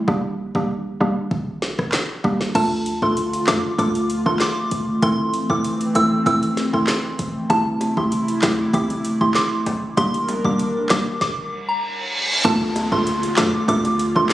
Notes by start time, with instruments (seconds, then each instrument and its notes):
0.08 808-style bass G1, synth pluck G3 A#3 D4 G4, kick
0.55 808-style bass G1, synth pluck G3 A#3 D4 G4, kick
1.00 808-style bass A#1, synth pluck G3 A#3 D4 G4
1.31 808-style bass G1, kick
1.62 snare
1.79 808-style bass F1, kick, cross-stick
1.92 snare, clap
2.24 synth pluck G3 A#3 D4 G4, kick
2.41 snare
2.55 808-style bass D2, analog synth pad D3 A3 F4, synth pluck A3 D4 F4 A4, synth bell A5, kick, closed hi-hat, crash
2.86 closed hi-hat
3.02 808-style bass D2, synth pluck A3 D4 F4 A4, synth bell C6, kick
3.17 closed hi-hat
3.33 closed hi-hat
3.47 808-style bass F2, synth pluck A3 D4 F4 A4, synth bell D6, snare, clap, closed hi-hat
3.78 808-style bass D2, synth pluck A3 D4 F4 A4, synth bell D6, kick, closed hi-hat
3.95 closed hi-hat
4.10 closed hi-hat
4.26 808-style bass C2, synth pluck A3 D4 F4 A4, synth bell C6, kick
4.40 synth bell D6, snare, clap, closed hi-hat
4.71 kick, closed hi-hat
5.02 808-style bass A1, analog synth pad E3 C4, synth pluck A3 C4 E4 A4, synth bell C6, kick, closed hi-hat
5.34 closed hi-hat
5.50 808-style bass A1, synth pluck A3 C4 E4 A4, synth bell D6, kick
5.64 closed hi-hat
5.81 closed hi-hat
5.95 808-style bass C2, synth pluck A3 C4 E4 A4, synth bell E6, closed hi-hat
6.26 808-style bass A1, synth pluck A3 C4 E4 A4, synth bell E6, kick, closed hi-hat
6.43 closed hi-hat
6.57 snare, closed hi-hat
6.73 808-style bass G1, synth pluck A3 C4 E4 A4, synth bell C6, kick
6.87 snare, clap, closed hi-hat
7.19 kick, closed hi-hat
7.50 808-style bass C2, analog synth pad C3 A3 E4, synth pluck A3 C4 E4 G4, synth bell A5, kick, closed hi-hat, high bongo
7.81 closed hi-hat, high bongo
7.97 808-style bass C2, synth pluck A3 C4 E4 G4, synth bell C6, kick
8.12 closed hi-hat
8.28 closed hi-hat
8.42 808-style bass D2, synth pluck A3 C4 E4 G4, synth bell D6, snare, clap, closed hi-hat, low bongo
8.73 808-style bass C2, synth pluck A3 C4 E4 G4, synth bell D6, kick, closed hi-hat, high bongo
8.90 closed hi-hat, high bongo
9.05 closed hi-hat
9.21 808-style bass A#1, synth pluck A3 C4 E4 G4, synth bell C6, kick
9.35 synth bell D6, snare, clap, closed hi-hat
9.66 kick, closed hi-hat, low bongo
9.97 808-style bass G1, synth pluck G3 A#3 D4 G4, analog synth pad G3 D4 A#4, synth bell C6, kick, closed hi-hat, high bongo
10.14 closed hi-hat
10.28 closed hi-hat, high bongo
10.45 808-style bass G1, synth pluck G3 A#3 D4 G4, synth bell D6, kick
10.59 closed hi-hat
10.89 808-style bass A#1, synth pluck G3 A#3 D4 G4, synth bell D6, snare, clap, closed hi-hat, low bongo
11.21 synth bell D6, kick, snare, reverse cymbal
11.69 synth bell A#5
12.44 808-style bass D2, analog synth pad D3 A3 F4, synth pluck A3 D4 F4 A4, synth bell A5, kick, closed hi-hat, downlifter, high bongo
12.76 closed hi-hat, high bongo
12.92 808-style bass D2, synth pluck A3 D4 F4 A4, synth bell C6, kick, high bongo
13.07 closed hi-hat
13.23 closed hi-hat
13.37 808-style bass F2, synth pluck A3 D4 F4 A4, synth bell D6, snare, clap, closed hi-hat, low bongo
13.68 808-style bass D2, synth pluck A3 D4 F4 A4, synth bell D6, kick, closed hi-hat, high bongo
13.85 closed hi-hat, high bongo
13.99 closed hi-hat
14.15 808-style bass C2, synth pluck A3 D4 F4 A4, synth bell C6, kick, high bongo
14.29 clap